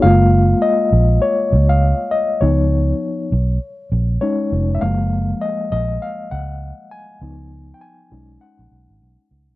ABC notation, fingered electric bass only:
X:1
M:4/4
L:1/16
Q:"Swing 16ths" 1/4=100
K:F#
V:1 name="Fingered electric bass" clef=bass
F,,,4 z2 A,,,2 z2 C,,3 z3 | C,,4 z2 B,,,2 z2 A,,,2 z2 E,,,2 | F,,,4 z2 A,,,2 z2 C,,3 z3 | C,,4 z2 B,,,2 z A,,, B,,, G,,, B,,, z C,, B,,, |]